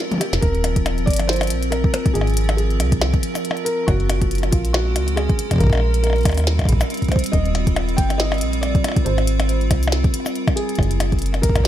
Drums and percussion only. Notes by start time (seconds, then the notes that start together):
0.12 closed hi-hat, mid tom
0.14 mid tom
0.18 closed hi-hat, mid tom, percussion blips
0.33 snare, closed hi-hat
0.43 kick, closed hi-hat
0.55 closed hi-hat
0.64 closed hi-hat, percussion blips
0.76 kick, closed hi-hat
0.86 closed hi-hat, percussion blips
0.98 closed hi-hat
1.07 kick, closed hi-hat
1.11 closed hi-hat
1.14 closed hi-hat
1.17 closed hi-hat
1.19 closed hi-hat, percussion blips
1.29 snare, closed hi-hat
1.33 closed hi-hat
1.36 closed hi-hat
1.41 closed hi-hat, percussion blips
1.43 closed hi-hat
1.47 closed hi-hat
1.50 closed hi-hat
1.63 closed hi-hat
1.72 closed hi-hat, percussion blips
1.84 kick
1.94 closed hi-hat, percussion blips
2.06 kick, closed hi-hat
2.15 closed hi-hat
2.21 percussion blips
2.27 closed hi-hat
2.30 closed hi-hat
2.34 closed hi-hat
2.37 closed hi-hat
2.41 closed hi-hat
2.44 closed hi-hat
2.49 closed hi-hat, percussion blips
2.58 closed hi-hat
2.71 closed hi-hat
2.80 closed hi-hat, percussion blips
2.92 kick, closed hi-hat
3.02 snare, closed hi-hat, percussion blips
3.14 kick, closed hi-hat
3.23 closed hi-hat
3.35 closed hi-hat, percussion blips, cabasa
3.45 closed hi-hat
3.51 percussion blips
3.57 closed hi-hat
3.66 closed hi-hat
3.88 kick, closed hi-hat, percussion blips
4.00 closed hi-hat
4.10 closed hi-hat, percussion blips
4.22 kick, closed hi-hat
4.31 closed hi-hat
4.35 closed hi-hat
4.38 closed hi-hat
4.43 closed hi-hat, percussion blips
4.53 kick, closed hi-hat
4.65 closed hi-hat
4.74 snare, percussion blips
4.96 closed hi-hat, percussion blips
5.08 closed hi-hat
5.17 closed hi-hat, percussion blips
5.29 kick, closed hi-hat
5.39 closed hi-hat
5.51 kick, closed hi-hat, percussion blips
5.53 kick
5.56 kick
5.58 kick, closed hi-hat
5.61 kick
5.64 kick
5.67 kick
5.70 kick, closed hi-hat, percussion blips
5.75 percussion blips
5.77 percussion blips
5.80 percussion blips
5.94 closed hi-hat
6.04 closed hi-hat, percussion blips
6.07 percussion blips
6.10 percussion blips
6.13 closed hi-hat, percussion blips
6.18 closed hi-hat
6.21 closed hi-hat
6.23 kick, closed hi-hat
6.25 closed hi-hat, percussion blips
6.28 closed hi-hat, percussion blips
6.32 closed hi-hat, percussion blips
6.35 closed hi-hat
6.38 closed hi-hat, percussion blips, cabasa
6.40 percussion blips
6.44 snare, closed hi-hat, percussion blips
6.59 kick, closed hi-hat, percussion blips
6.62 percussion blips
6.64 kick, percussion blips
6.66 closed hi-hat, percussion blips
6.73 kick
6.81 closed hi-hat, percussion blips, cabasa
6.90 closed hi-hat
6.94 closed hi-hat
6.97 closed hi-hat
7.02 kick, closed hi-hat
7.04 closed hi-hat
7.08 kick, closed hi-hat
7.12 closed hi-hat, percussion blips
7.16 kick, closed hi-hat
7.24 closed hi-hat
7.26 closed hi-hat
7.33 kick, closed hi-hat
7.46 closed hi-hat
7.55 closed hi-hat, percussion blips
7.67 kick, closed hi-hat
7.76 closed hi-hat, percussion blips
7.89 closed hi-hat
7.98 kick, closed hi-hat
8.10 closed hi-hat, percussion blips
8.20 snare, closed hi-hat
8.32 closed hi-hat, percussion blips
8.34 closed hi-hat
8.38 closed hi-hat
8.41 closed hi-hat
8.53 closed hi-hat
8.63 closed hi-hat, percussion blips
8.75 kick, closed hi-hat
8.84 closed hi-hat, percussion blips
8.88 percussion blips
8.92 percussion blips
8.96 kick, closed hi-hat
9.06 closed hi-hat
9.18 closed hi-hat, percussion blips
9.27 closed hi-hat
9.40 closed hi-hat, percussion blips
9.49 closed hi-hat
9.61 closed hi-hat
9.71 kick, closed hi-hat, percussion blips
9.83 closed hi-hat, cabasa
9.88 percussion blips
9.92 snare, closed hi-hat
10.04 kick, closed hi-hat
10.14 closed hi-hat
10.26 percussion blips, cabasa
10.36 closed hi-hat
10.47 kick, closed hi-hat, percussion blips
10.57 closed hi-hat
10.69 closed hi-hat
10.75 kick, closed hi-hat, percussion blips
10.83 closed hi-hat
10.91 closed hi-hat
11.00 closed hi-hat, percussion blips
11.12 kick, closed hi-hat
11.19 closed hi-hat
11.22 closed hi-hat
11.26 closed hi-hat
11.34 closed hi-hat, percussion blips
11.43 kick, closed hi-hat
11.49 kick
11.55 kick, closed hi-hat, percussion blips
11.60 kick